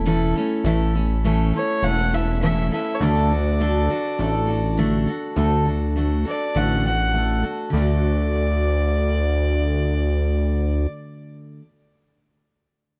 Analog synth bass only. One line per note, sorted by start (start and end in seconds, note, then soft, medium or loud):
0.00 0.34 E1 medium
0.64 1.53 A1 loud
1.83 2.71 E1 medium
3.00 3.89 D2 loud
4.19 5.07 A1 medium
5.37 6.25 D2 loud
6.56 7.44 A1 medium
7.73 10.87 D2 loud